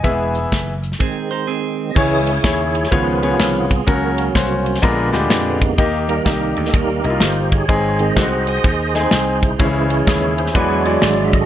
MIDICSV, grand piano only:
0, 0, Header, 1, 2, 480
1, 0, Start_track
1, 0, Tempo, 477707
1, 42, Time_signature, 4, 2, 24, 8
1, 11513, End_track
2, 0, Start_track
2, 0, Title_t, "Grand piano"
2, 0, Program_c, 0, 0
2, 0, Note_on_c, 0, 75, 55
2, 0, Note_on_c, 0, 80, 64
2, 38, Note_on_c, 0, 59, 81
2, 41, Note_on_c, 0, 64, 73
2, 43, Note_on_c, 0, 76, 96
2, 44, Note_on_c, 0, 52, 71
2, 44, Note_on_c, 0, 68, 76
2, 332, Note_off_c, 0, 80, 0
2, 336, Note_off_c, 0, 75, 0
2, 722, Note_off_c, 0, 59, 0
2, 723, Note_off_c, 0, 64, 0
2, 724, Note_off_c, 0, 76, 0
2, 725, Note_off_c, 0, 68, 0
2, 798, Note_off_c, 0, 52, 0
2, 1970, Note_on_c, 0, 64, 74
2, 1971, Note_on_c, 0, 49, 65
2, 1974, Note_on_c, 0, 68, 66
2, 1978, Note_on_c, 0, 73, 85
2, 2336, Note_off_c, 0, 64, 0
2, 2338, Note_off_c, 0, 68, 0
2, 2340, Note_off_c, 0, 73, 0
2, 2448, Note_on_c, 0, 64, 73
2, 2451, Note_on_c, 0, 68, 65
2, 2455, Note_on_c, 0, 73, 81
2, 2723, Note_off_c, 0, 49, 0
2, 2916, Note_off_c, 0, 68, 0
2, 2918, Note_off_c, 0, 73, 0
2, 2925, Note_on_c, 0, 59, 77
2, 2928, Note_off_c, 0, 64, 0
2, 2929, Note_on_c, 0, 61, 70
2, 2931, Note_on_c, 0, 68, 72
2, 2932, Note_on_c, 0, 49, 63
2, 2932, Note_on_c, 0, 65, 73
2, 2933, Note_on_c, 0, 73, 86
2, 3178, Note_off_c, 0, 59, 0
2, 3180, Note_off_c, 0, 61, 0
2, 3181, Note_off_c, 0, 65, 0
2, 3181, Note_off_c, 0, 68, 0
2, 3182, Note_off_c, 0, 73, 0
2, 3240, Note_on_c, 0, 59, 73
2, 3241, Note_on_c, 0, 61, 64
2, 3241, Note_on_c, 0, 68, 62
2, 3242, Note_on_c, 0, 65, 62
2, 3244, Note_on_c, 0, 73, 75
2, 3683, Note_off_c, 0, 49, 0
2, 3715, Note_off_c, 0, 59, 0
2, 3716, Note_off_c, 0, 61, 0
2, 3716, Note_off_c, 0, 65, 0
2, 3716, Note_off_c, 0, 68, 0
2, 3718, Note_off_c, 0, 73, 0
2, 3884, Note_on_c, 0, 61, 77
2, 3890, Note_on_c, 0, 49, 67
2, 3890, Note_on_c, 0, 70, 90
2, 3891, Note_on_c, 0, 66, 72
2, 4253, Note_off_c, 0, 61, 0
2, 4256, Note_off_c, 0, 70, 0
2, 4257, Note_off_c, 0, 66, 0
2, 4368, Note_on_c, 0, 61, 76
2, 4370, Note_on_c, 0, 66, 67
2, 4377, Note_on_c, 0, 72, 79
2, 4641, Note_off_c, 0, 49, 0
2, 4843, Note_on_c, 0, 56, 88
2, 4846, Note_on_c, 0, 59, 89
2, 4847, Note_off_c, 0, 61, 0
2, 4848, Note_off_c, 0, 66, 0
2, 4848, Note_on_c, 0, 62, 85
2, 4848, Note_on_c, 0, 65, 85
2, 4850, Note_on_c, 0, 46, 78
2, 4851, Note_on_c, 0, 70, 106
2, 4852, Note_off_c, 0, 72, 0
2, 5096, Note_off_c, 0, 56, 0
2, 5097, Note_off_c, 0, 59, 0
2, 5098, Note_off_c, 0, 62, 0
2, 5098, Note_off_c, 0, 65, 0
2, 5100, Note_off_c, 0, 70, 0
2, 5149, Note_on_c, 0, 56, 82
2, 5153, Note_on_c, 0, 59, 77
2, 5155, Note_on_c, 0, 62, 81
2, 5156, Note_on_c, 0, 65, 81
2, 5160, Note_on_c, 0, 67, 92
2, 5600, Note_off_c, 0, 46, 0
2, 5628, Note_off_c, 0, 56, 0
2, 5630, Note_off_c, 0, 59, 0
2, 5631, Note_off_c, 0, 62, 0
2, 5632, Note_off_c, 0, 65, 0
2, 5634, Note_off_c, 0, 67, 0
2, 5807, Note_on_c, 0, 51, 68
2, 5807, Note_on_c, 0, 58, 84
2, 5808, Note_on_c, 0, 63, 76
2, 5813, Note_on_c, 0, 67, 89
2, 6173, Note_off_c, 0, 58, 0
2, 6173, Note_off_c, 0, 63, 0
2, 6176, Note_off_c, 0, 67, 0
2, 6281, Note_on_c, 0, 58, 72
2, 6285, Note_on_c, 0, 63, 64
2, 6289, Note_on_c, 0, 67, 82
2, 6557, Note_off_c, 0, 51, 0
2, 6762, Note_off_c, 0, 58, 0
2, 6764, Note_off_c, 0, 63, 0
2, 6766, Note_off_c, 0, 67, 0
2, 7072, Note_on_c, 0, 58, 70
2, 7074, Note_on_c, 0, 63, 64
2, 7080, Note_on_c, 0, 64, 61
2, 7121, Note_off_c, 0, 64, 0
2, 7136, Note_on_c, 0, 65, 77
2, 7548, Note_off_c, 0, 58, 0
2, 7549, Note_off_c, 0, 63, 0
2, 7580, Note_off_c, 0, 65, 0
2, 7722, Note_on_c, 0, 44, 64
2, 7722, Note_on_c, 0, 60, 75
2, 7725, Note_on_c, 0, 63, 68
2, 7729, Note_on_c, 0, 68, 90
2, 8088, Note_off_c, 0, 60, 0
2, 8090, Note_off_c, 0, 63, 0
2, 8092, Note_off_c, 0, 68, 0
2, 8205, Note_on_c, 0, 57, 55
2, 8208, Note_on_c, 0, 63, 68
2, 8209, Note_on_c, 0, 66, 78
2, 8259, Note_on_c, 0, 60, 72
2, 8280, Note_off_c, 0, 57, 0
2, 8473, Note_off_c, 0, 44, 0
2, 8683, Note_off_c, 0, 63, 0
2, 8684, Note_off_c, 0, 66, 0
2, 8708, Note_off_c, 0, 60, 0
2, 8988, Note_on_c, 0, 57, 55
2, 8992, Note_on_c, 0, 63, 59
2, 8995, Note_on_c, 0, 68, 76
2, 9032, Note_off_c, 0, 57, 0
2, 9044, Note_on_c, 0, 60, 70
2, 9466, Note_off_c, 0, 63, 0
2, 9467, Note_off_c, 0, 68, 0
2, 9492, Note_off_c, 0, 60, 0
2, 9638, Note_on_c, 0, 61, 79
2, 9641, Note_on_c, 0, 49, 71
2, 9645, Note_on_c, 0, 64, 72
2, 9649, Note_on_c, 0, 68, 84
2, 10004, Note_off_c, 0, 61, 0
2, 10008, Note_off_c, 0, 64, 0
2, 10009, Note_off_c, 0, 68, 0
2, 10116, Note_on_c, 0, 61, 70
2, 10122, Note_on_c, 0, 64, 70
2, 10125, Note_on_c, 0, 68, 78
2, 10390, Note_off_c, 0, 49, 0
2, 10585, Note_off_c, 0, 64, 0
2, 10595, Note_off_c, 0, 61, 0
2, 10595, Note_on_c, 0, 56, 81
2, 10599, Note_off_c, 0, 68, 0
2, 10599, Note_on_c, 0, 62, 75
2, 10600, Note_on_c, 0, 64, 72
2, 10601, Note_on_c, 0, 52, 68
2, 10603, Note_on_c, 0, 66, 72
2, 10606, Note_on_c, 0, 71, 87
2, 10846, Note_off_c, 0, 56, 0
2, 10848, Note_off_c, 0, 62, 0
2, 10848, Note_off_c, 0, 64, 0
2, 10850, Note_off_c, 0, 66, 0
2, 10851, Note_off_c, 0, 71, 0
2, 10905, Note_on_c, 0, 56, 72
2, 10907, Note_on_c, 0, 62, 63
2, 10909, Note_on_c, 0, 66, 61
2, 10910, Note_on_c, 0, 64, 62
2, 10913, Note_on_c, 0, 74, 75
2, 11349, Note_off_c, 0, 52, 0
2, 11379, Note_off_c, 0, 56, 0
2, 11381, Note_off_c, 0, 62, 0
2, 11382, Note_off_c, 0, 64, 0
2, 11382, Note_off_c, 0, 66, 0
2, 11384, Note_off_c, 0, 74, 0
2, 11513, End_track
0, 0, End_of_file